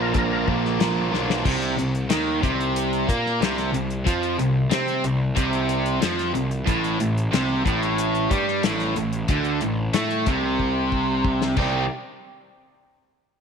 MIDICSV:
0, 0, Header, 1, 7, 480
1, 0, Start_track
1, 0, Tempo, 652174
1, 1069, Time_signature, 4, 2, 24, 8
1, 9866, End_track
2, 0, Start_track
2, 0, Title_t, "Tonewheel organ"
2, 0, Program_c, 0, 16
2, 7, Note_on_c, 0, 70, 81
2, 103, Note_on_c, 0, 69, 68
2, 110, Note_off_c, 0, 70, 0
2, 127, Note_off_c, 0, 69, 0
2, 136, Note_on_c, 0, 70, 104
2, 356, Note_off_c, 0, 70, 0
2, 9866, End_track
3, 0, Start_track
3, 0, Title_t, "Overdriven electric guitar"
3, 0, Program_c, 1, 29
3, 0, Note_on_c, 1, 53, 85
3, 94, Note_off_c, 1, 53, 0
3, 103, Note_on_c, 1, 53, 96
3, 346, Note_off_c, 1, 53, 0
3, 355, Note_on_c, 1, 53, 86
3, 578, Note_off_c, 1, 53, 0
3, 587, Note_on_c, 1, 53, 89
3, 816, Note_off_c, 1, 53, 0
3, 825, Note_on_c, 1, 53, 99
3, 1053, Note_off_c, 1, 53, 0
3, 8533, Note_on_c, 1, 60, 103
3, 8716, Note_off_c, 1, 60, 0
3, 9866, End_track
4, 0, Start_track
4, 0, Title_t, "Overdriven electric guitar"
4, 0, Program_c, 2, 29
4, 0, Note_on_c, 2, 46, 91
4, 0, Note_on_c, 2, 50, 84
4, 0, Note_on_c, 2, 58, 86
4, 0, Note_on_c, 2, 62, 85
4, 0, Note_on_c, 2, 65, 93
4, 91, Note_off_c, 2, 46, 0
4, 94, Note_off_c, 2, 50, 0
4, 97, Note_off_c, 2, 58, 0
4, 99, Note_off_c, 2, 62, 0
4, 100, Note_on_c, 2, 46, 102
4, 103, Note_on_c, 2, 50, 95
4, 105, Note_off_c, 2, 65, 0
4, 106, Note_on_c, 2, 58, 106
4, 108, Note_on_c, 2, 62, 109
4, 114, Note_on_c, 2, 65, 119
4, 330, Note_off_c, 2, 46, 0
4, 335, Note_off_c, 2, 50, 0
4, 336, Note_off_c, 2, 58, 0
4, 339, Note_on_c, 2, 46, 86
4, 344, Note_on_c, 2, 50, 80
4, 345, Note_off_c, 2, 62, 0
4, 345, Note_on_c, 2, 58, 86
4, 347, Note_off_c, 2, 65, 0
4, 354, Note_on_c, 2, 62, 90
4, 356, Note_on_c, 2, 65, 87
4, 570, Note_off_c, 2, 46, 0
4, 574, Note_off_c, 2, 50, 0
4, 578, Note_off_c, 2, 58, 0
4, 579, Note_on_c, 2, 46, 84
4, 580, Note_off_c, 2, 62, 0
4, 583, Note_on_c, 2, 50, 90
4, 584, Note_off_c, 2, 65, 0
4, 587, Note_on_c, 2, 58, 91
4, 589, Note_on_c, 2, 62, 91
4, 593, Note_on_c, 2, 65, 98
4, 802, Note_off_c, 2, 46, 0
4, 810, Note_off_c, 2, 50, 0
4, 810, Note_on_c, 2, 46, 92
4, 812, Note_off_c, 2, 58, 0
4, 816, Note_off_c, 2, 62, 0
4, 817, Note_off_c, 2, 65, 0
4, 819, Note_on_c, 2, 50, 92
4, 821, Note_on_c, 2, 58, 89
4, 825, Note_on_c, 2, 62, 100
4, 826, Note_on_c, 2, 65, 104
4, 1046, Note_off_c, 2, 46, 0
4, 1050, Note_off_c, 2, 50, 0
4, 1051, Note_off_c, 2, 58, 0
4, 1053, Note_off_c, 2, 62, 0
4, 1053, Note_off_c, 2, 65, 0
4, 1059, Note_on_c, 2, 48, 101
4, 1292, Note_off_c, 2, 48, 0
4, 1301, Note_on_c, 2, 48, 64
4, 1497, Note_off_c, 2, 48, 0
4, 1546, Note_on_c, 2, 51, 111
4, 1774, Note_off_c, 2, 51, 0
4, 1777, Note_on_c, 2, 48, 97
4, 2256, Note_off_c, 2, 48, 0
4, 2264, Note_on_c, 2, 58, 98
4, 2500, Note_off_c, 2, 58, 0
4, 2512, Note_on_c, 2, 48, 97
4, 2741, Note_off_c, 2, 48, 0
4, 2749, Note_on_c, 2, 48, 74
4, 2942, Note_off_c, 2, 48, 0
4, 2982, Note_on_c, 2, 53, 104
4, 3219, Note_off_c, 2, 53, 0
4, 3232, Note_on_c, 2, 48, 62
4, 3423, Note_off_c, 2, 48, 0
4, 3463, Note_on_c, 2, 60, 110
4, 3700, Note_off_c, 2, 60, 0
4, 3712, Note_on_c, 2, 48, 69
4, 3904, Note_off_c, 2, 48, 0
4, 3940, Note_on_c, 2, 48, 100
4, 4419, Note_off_c, 2, 48, 0
4, 4430, Note_on_c, 2, 53, 104
4, 4664, Note_off_c, 2, 53, 0
4, 4670, Note_on_c, 2, 48, 77
4, 4863, Note_off_c, 2, 48, 0
4, 4915, Note_on_c, 2, 45, 112
4, 5146, Note_off_c, 2, 45, 0
4, 5159, Note_on_c, 2, 45, 68
4, 5348, Note_off_c, 2, 45, 0
4, 5394, Note_on_c, 2, 48, 113
4, 5626, Note_off_c, 2, 48, 0
4, 5636, Note_on_c, 2, 45, 96
4, 6107, Note_off_c, 2, 45, 0
4, 6117, Note_on_c, 2, 55, 93
4, 6348, Note_off_c, 2, 55, 0
4, 6367, Note_on_c, 2, 45, 105
4, 6593, Note_off_c, 2, 45, 0
4, 6609, Note_on_c, 2, 45, 78
4, 6793, Note_off_c, 2, 45, 0
4, 6850, Note_on_c, 2, 50, 98
4, 7075, Note_off_c, 2, 50, 0
4, 7087, Note_on_c, 2, 45, 64
4, 7272, Note_off_c, 2, 45, 0
4, 7318, Note_on_c, 2, 57, 113
4, 7549, Note_off_c, 2, 57, 0
4, 7564, Note_on_c, 2, 48, 100
4, 8503, Note_off_c, 2, 48, 0
4, 8512, Note_on_c, 2, 48, 83
4, 8515, Note_on_c, 2, 51, 92
4, 8520, Note_on_c, 2, 55, 97
4, 8522, Note_on_c, 2, 63, 106
4, 8524, Note_on_c, 2, 67, 110
4, 8705, Note_off_c, 2, 48, 0
4, 8707, Note_off_c, 2, 51, 0
4, 8709, Note_off_c, 2, 55, 0
4, 8710, Note_off_c, 2, 63, 0
4, 8711, Note_off_c, 2, 67, 0
4, 9866, End_track
5, 0, Start_track
5, 0, Title_t, "Distorted electric guitar"
5, 0, Program_c, 3, 30
5, 6337, Note_on_c, 3, 45, 99
5, 6578, Note_off_c, 3, 45, 0
5, 9866, End_track
6, 0, Start_track
6, 0, Title_t, "Picked electric bass"
6, 0, Program_c, 4, 34
6, 0, Note_on_c, 4, 34, 90
6, 100, Note_off_c, 4, 34, 0
6, 106, Note_on_c, 4, 34, 88
6, 332, Note_off_c, 4, 34, 0
6, 352, Note_on_c, 4, 34, 91
6, 575, Note_off_c, 4, 34, 0
6, 595, Note_on_c, 4, 34, 83
6, 817, Note_off_c, 4, 34, 0
6, 836, Note_on_c, 4, 35, 81
6, 1057, Note_off_c, 4, 35, 0
6, 1069, Note_on_c, 4, 36, 87
6, 1293, Note_off_c, 4, 36, 0
6, 1322, Note_on_c, 4, 36, 81
6, 1539, Note_off_c, 4, 36, 0
6, 1554, Note_on_c, 4, 39, 91
6, 1775, Note_off_c, 4, 39, 0
6, 1791, Note_on_c, 4, 36, 95
6, 2241, Note_off_c, 4, 36, 0
6, 2275, Note_on_c, 4, 46, 90
6, 2496, Note_off_c, 4, 46, 0
6, 2509, Note_on_c, 4, 36, 86
6, 2733, Note_off_c, 4, 36, 0
6, 2756, Note_on_c, 4, 36, 77
6, 2976, Note_off_c, 4, 36, 0
6, 2993, Note_on_c, 4, 41, 96
6, 3215, Note_off_c, 4, 41, 0
6, 3234, Note_on_c, 4, 36, 84
6, 3456, Note_off_c, 4, 36, 0
6, 3478, Note_on_c, 4, 48, 94
6, 3698, Note_off_c, 4, 48, 0
6, 3709, Note_on_c, 4, 36, 81
6, 3933, Note_off_c, 4, 36, 0
6, 3953, Note_on_c, 4, 36, 91
6, 4403, Note_off_c, 4, 36, 0
6, 4435, Note_on_c, 4, 41, 91
6, 4657, Note_off_c, 4, 41, 0
6, 4674, Note_on_c, 4, 36, 73
6, 4896, Note_off_c, 4, 36, 0
6, 4907, Note_on_c, 4, 33, 91
6, 5133, Note_off_c, 4, 33, 0
6, 5159, Note_on_c, 4, 33, 81
6, 5379, Note_off_c, 4, 33, 0
6, 5395, Note_on_c, 4, 36, 95
6, 5617, Note_off_c, 4, 36, 0
6, 5631, Note_on_c, 4, 33, 93
6, 6083, Note_off_c, 4, 33, 0
6, 6114, Note_on_c, 4, 43, 89
6, 6337, Note_off_c, 4, 43, 0
6, 6360, Note_on_c, 4, 33, 93
6, 6580, Note_off_c, 4, 33, 0
6, 6598, Note_on_c, 4, 33, 80
6, 6819, Note_off_c, 4, 33, 0
6, 6835, Note_on_c, 4, 38, 89
6, 7058, Note_off_c, 4, 38, 0
6, 7080, Note_on_c, 4, 33, 85
6, 7300, Note_off_c, 4, 33, 0
6, 7316, Note_on_c, 4, 45, 91
6, 7538, Note_off_c, 4, 45, 0
6, 7557, Note_on_c, 4, 36, 96
6, 8486, Note_off_c, 4, 36, 0
6, 8514, Note_on_c, 4, 36, 85
6, 8737, Note_off_c, 4, 36, 0
6, 9866, End_track
7, 0, Start_track
7, 0, Title_t, "Drums"
7, 105, Note_on_c, 9, 42, 72
7, 110, Note_on_c, 9, 36, 108
7, 178, Note_off_c, 9, 42, 0
7, 184, Note_off_c, 9, 36, 0
7, 352, Note_on_c, 9, 36, 78
7, 426, Note_off_c, 9, 36, 0
7, 481, Note_on_c, 9, 38, 29
7, 554, Note_off_c, 9, 38, 0
7, 592, Note_on_c, 9, 42, 73
7, 597, Note_on_c, 9, 38, 112
7, 665, Note_off_c, 9, 42, 0
7, 671, Note_off_c, 9, 38, 0
7, 840, Note_on_c, 9, 38, 57
7, 914, Note_off_c, 9, 38, 0
7, 959, Note_on_c, 9, 38, 90
7, 1032, Note_off_c, 9, 38, 0
7, 1071, Note_on_c, 9, 36, 109
7, 1072, Note_on_c, 9, 49, 120
7, 1145, Note_off_c, 9, 36, 0
7, 1145, Note_off_c, 9, 49, 0
7, 1192, Note_on_c, 9, 42, 42
7, 1265, Note_off_c, 9, 42, 0
7, 1314, Note_on_c, 9, 42, 70
7, 1388, Note_off_c, 9, 42, 0
7, 1434, Note_on_c, 9, 42, 41
7, 1508, Note_off_c, 9, 42, 0
7, 1545, Note_on_c, 9, 42, 100
7, 1550, Note_on_c, 9, 38, 115
7, 1618, Note_off_c, 9, 42, 0
7, 1623, Note_off_c, 9, 38, 0
7, 1791, Note_on_c, 9, 36, 100
7, 1793, Note_on_c, 9, 42, 71
7, 1865, Note_off_c, 9, 36, 0
7, 1866, Note_off_c, 9, 42, 0
7, 1917, Note_on_c, 9, 42, 43
7, 1991, Note_off_c, 9, 42, 0
7, 2033, Note_on_c, 9, 42, 90
7, 2107, Note_off_c, 9, 42, 0
7, 2156, Note_on_c, 9, 42, 41
7, 2230, Note_off_c, 9, 42, 0
7, 2273, Note_on_c, 9, 36, 101
7, 2277, Note_on_c, 9, 42, 67
7, 2347, Note_off_c, 9, 36, 0
7, 2351, Note_off_c, 9, 42, 0
7, 2401, Note_on_c, 9, 38, 29
7, 2475, Note_off_c, 9, 38, 0
7, 2519, Note_on_c, 9, 42, 89
7, 2524, Note_on_c, 9, 38, 103
7, 2593, Note_off_c, 9, 42, 0
7, 2598, Note_off_c, 9, 38, 0
7, 2636, Note_on_c, 9, 42, 46
7, 2641, Note_on_c, 9, 38, 31
7, 2710, Note_off_c, 9, 42, 0
7, 2715, Note_off_c, 9, 38, 0
7, 2755, Note_on_c, 9, 42, 70
7, 2829, Note_off_c, 9, 42, 0
7, 2874, Note_on_c, 9, 42, 44
7, 2948, Note_off_c, 9, 42, 0
7, 2993, Note_on_c, 9, 36, 106
7, 2993, Note_on_c, 9, 42, 101
7, 3066, Note_off_c, 9, 36, 0
7, 3067, Note_off_c, 9, 42, 0
7, 3113, Note_on_c, 9, 42, 44
7, 3187, Note_off_c, 9, 42, 0
7, 3232, Note_on_c, 9, 42, 74
7, 3306, Note_off_c, 9, 42, 0
7, 3467, Note_on_c, 9, 42, 104
7, 3472, Note_on_c, 9, 38, 114
7, 3541, Note_off_c, 9, 42, 0
7, 3546, Note_off_c, 9, 38, 0
7, 3590, Note_on_c, 9, 42, 44
7, 3664, Note_off_c, 9, 42, 0
7, 3709, Note_on_c, 9, 42, 78
7, 3783, Note_off_c, 9, 42, 0
7, 3949, Note_on_c, 9, 42, 107
7, 3951, Note_on_c, 9, 36, 104
7, 4022, Note_off_c, 9, 42, 0
7, 4025, Note_off_c, 9, 36, 0
7, 4069, Note_on_c, 9, 42, 48
7, 4143, Note_off_c, 9, 42, 0
7, 4187, Note_on_c, 9, 42, 77
7, 4261, Note_off_c, 9, 42, 0
7, 4311, Note_on_c, 9, 42, 47
7, 4384, Note_off_c, 9, 42, 0
7, 4430, Note_on_c, 9, 42, 100
7, 4435, Note_on_c, 9, 38, 108
7, 4503, Note_off_c, 9, 42, 0
7, 4508, Note_off_c, 9, 38, 0
7, 4556, Note_on_c, 9, 42, 45
7, 4561, Note_on_c, 9, 38, 34
7, 4630, Note_off_c, 9, 42, 0
7, 4635, Note_off_c, 9, 38, 0
7, 4673, Note_on_c, 9, 42, 71
7, 4747, Note_off_c, 9, 42, 0
7, 4792, Note_on_c, 9, 42, 45
7, 4865, Note_off_c, 9, 42, 0
7, 4910, Note_on_c, 9, 42, 94
7, 4912, Note_on_c, 9, 36, 105
7, 4984, Note_off_c, 9, 42, 0
7, 4986, Note_off_c, 9, 36, 0
7, 5036, Note_on_c, 9, 42, 43
7, 5110, Note_off_c, 9, 42, 0
7, 5153, Note_on_c, 9, 42, 74
7, 5226, Note_off_c, 9, 42, 0
7, 5281, Note_on_c, 9, 42, 45
7, 5355, Note_off_c, 9, 42, 0
7, 5397, Note_on_c, 9, 42, 99
7, 5402, Note_on_c, 9, 38, 116
7, 5471, Note_off_c, 9, 42, 0
7, 5476, Note_off_c, 9, 38, 0
7, 5636, Note_on_c, 9, 36, 107
7, 5643, Note_on_c, 9, 42, 65
7, 5709, Note_off_c, 9, 36, 0
7, 5716, Note_off_c, 9, 42, 0
7, 5761, Note_on_c, 9, 42, 43
7, 5834, Note_off_c, 9, 42, 0
7, 5876, Note_on_c, 9, 42, 98
7, 5950, Note_off_c, 9, 42, 0
7, 5996, Note_on_c, 9, 42, 41
7, 6070, Note_off_c, 9, 42, 0
7, 6116, Note_on_c, 9, 36, 102
7, 6116, Note_on_c, 9, 42, 67
7, 6189, Note_off_c, 9, 36, 0
7, 6189, Note_off_c, 9, 42, 0
7, 6241, Note_on_c, 9, 38, 31
7, 6315, Note_off_c, 9, 38, 0
7, 6354, Note_on_c, 9, 42, 90
7, 6359, Note_on_c, 9, 38, 114
7, 6427, Note_off_c, 9, 42, 0
7, 6432, Note_off_c, 9, 38, 0
7, 6476, Note_on_c, 9, 42, 44
7, 6481, Note_on_c, 9, 38, 34
7, 6550, Note_off_c, 9, 42, 0
7, 6555, Note_off_c, 9, 38, 0
7, 6595, Note_on_c, 9, 42, 66
7, 6669, Note_off_c, 9, 42, 0
7, 6717, Note_on_c, 9, 42, 48
7, 6790, Note_off_c, 9, 42, 0
7, 6832, Note_on_c, 9, 42, 91
7, 6835, Note_on_c, 9, 36, 110
7, 6906, Note_off_c, 9, 42, 0
7, 6909, Note_off_c, 9, 36, 0
7, 6951, Note_on_c, 9, 42, 40
7, 7024, Note_off_c, 9, 42, 0
7, 7071, Note_on_c, 9, 42, 72
7, 7145, Note_off_c, 9, 42, 0
7, 7312, Note_on_c, 9, 42, 100
7, 7318, Note_on_c, 9, 38, 116
7, 7386, Note_off_c, 9, 42, 0
7, 7391, Note_off_c, 9, 38, 0
7, 7437, Note_on_c, 9, 42, 42
7, 7511, Note_off_c, 9, 42, 0
7, 7554, Note_on_c, 9, 42, 73
7, 7558, Note_on_c, 9, 36, 100
7, 7627, Note_off_c, 9, 42, 0
7, 7631, Note_off_c, 9, 36, 0
7, 7798, Note_on_c, 9, 36, 60
7, 7872, Note_off_c, 9, 36, 0
7, 8038, Note_on_c, 9, 36, 71
7, 8112, Note_off_c, 9, 36, 0
7, 8276, Note_on_c, 9, 36, 89
7, 8350, Note_off_c, 9, 36, 0
7, 8402, Note_on_c, 9, 38, 77
7, 8475, Note_off_c, 9, 38, 0
7, 8512, Note_on_c, 9, 49, 84
7, 8517, Note_on_c, 9, 36, 102
7, 8586, Note_off_c, 9, 49, 0
7, 8590, Note_off_c, 9, 36, 0
7, 9866, End_track
0, 0, End_of_file